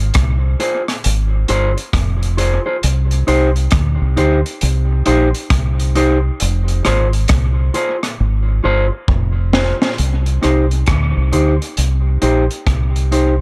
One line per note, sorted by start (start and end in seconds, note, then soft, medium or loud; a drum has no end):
0.14 0.54 C2 medium
0.14 kick loud
0.14 cross-stick loud
0.14 closed hi-hat loud
0.60 0.81 F4 medium
0.60 0.82 G#4 medium
0.60 0.82 C5 medium
0.60 closed hi-hat medium
0.88 cross-stick medium
0.88 closed hi-hat medium
1.04 1.44 G#1 medium
1.04 closed hi-hat loud
1.48 1.74 G1 loud
1.48 1.71 F4 medium
1.48 1.71 G#4 loud
1.48 1.71 C5 loud
1.48 closed hi-hat medium
1.77 muted clean electric guitar stroke medium
1.77 closed hi-hat medium
1.93 2.57 F1 loud
1.93 kick loud
1.93 cross-stick loud
1.93 closed hi-hat loud
2.23 closed hi-hat medium
2.37 2.59 F4 medium
2.37 2.60 G#4 medium
2.37 2.60 C5 medium
2.37 closed hi-hat medium
2.66 2.76 F4 medium
2.66 2.76 G#4 medium
2.66 2.76 C5 medium
2.83 3.22 C2 medium
2.83 closed hi-hat loud
3.11 closed hi-hat soft
3.27 3.67 C2 medium
3.27 3.49 D#4 medium
3.27 3.49 G4 medium
3.27 3.49 C5 loud
3.27 closed hi-hat medium
3.56 closed hi-hat soft
3.71 3.97 D2 medium
3.71 kick loud
3.71 cross-stick loud
3.71 closed hi-hat medium
4.02 4.15 C2 medium
4.17 4.42 D2 loud
4.17 4.38 D#4 medium
4.17 4.39 G4 loud
4.17 4.39 C5 medium
4.17 closed hi-hat medium
4.46 closed hi-hat medium
4.61 5.01 C2 loud
4.61 closed hi-hat loud
5.06 5.31 A#1 loud
5.06 5.28 D#4 loud
5.06 5.28 G4 loud
5.06 5.28 C5 medium
5.06 closed hi-hat medium
5.34 closed hi-hat medium
5.50 6.29 C2 medium
5.50 kick loud
5.50 cross-stick loud
5.50 closed hi-hat loud
5.79 closed hi-hat medium
5.95 6.17 D#4 medium
5.95 6.17 G4 medium
5.95 6.18 C5 loud
5.95 closed hi-hat medium
6.40 6.80 F1 loud
6.40 closed hi-hat loud
6.68 closed hi-hat soft
6.85 7.25 G#1 loud
6.85 7.07 F4 medium
6.85 7.07 G#4 loud
6.85 7.07 C5 loud
6.85 cross-stick medium
6.85 closed hi-hat medium
7.13 closed hi-hat soft
7.28 7.69 C2 medium
7.28 kick loud
7.28 cross-stick loud
7.28 closed hi-hat medium
7.74 7.96 F4 medium
7.74 7.96 G#4 medium
7.74 7.97 C5 medium
7.74 closed hi-hat medium
8.03 cross-stick medium
8.03 closed hi-hat medium
8.20 8.59 G#1 medium
8.64 8.89 G1 loud
8.64 8.85 F4 medium
8.64 8.86 G#4 medium
8.64 8.86 C5 loud
8.92 muted clean electric guitar stroke soft
9.08 9.72 F1 loud
9.08 kick loud
9.53 9.75 F4 medium
9.53 9.75 G#4 medium
9.53 9.75 C5 medium
9.53 snare loud
9.82 9.92 F4 medium
9.82 9.92 G#4 medium
9.82 9.91 C5 medium
9.82 snare loud
9.98 10.38 C2 medium
9.98 closed hi-hat medium
10.26 closed hi-hat soft
10.42 10.83 C2 medium
10.42 10.64 D#4 medium
10.42 10.65 G4 medium
10.42 10.65 C5 medium
10.42 cross-stick medium
10.42 closed hi-hat medium
10.71 closed hi-hat soft
10.86 11.13 D2 medium
10.86 kick loud
10.86 cross-stick loud
10.86 closed hi-hat medium
11.17 11.31 C2 medium
11.32 11.58 D2 medium
11.32 11.54 D#4 medium
11.32 11.54 G4 medium
11.32 11.55 C5 medium
11.32 closed hi-hat medium
11.62 closed hi-hat medium
11.77 12.17 C2 medium
11.77 closed hi-hat medium
12.22 12.47 A#1 medium
12.22 12.44 D#4 medium
12.22 12.44 G4 medium
12.22 12.44 C5 medium
12.22 closed hi-hat medium
12.51 closed hi-hat soft
12.67 13.41 C2 medium
12.67 kick loud
12.67 cross-stick loud
12.67 closed hi-hat medium
12.96 closed hi-hat medium
13.12 13.34 D#4 medium
13.12 13.34 G4 medium
13.12 13.34 C5 medium
13.12 closed hi-hat medium